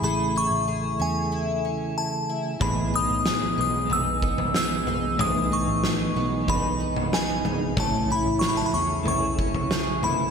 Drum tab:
SD |----------------|----o-------o---|----o-------o---|----o-------o---|
FT |----------------|o-------o--o--o-|o-------o--o--o-|o-------o--o--o-|
BD |----------------|o---------o-----|--------o-------|o---------o-----|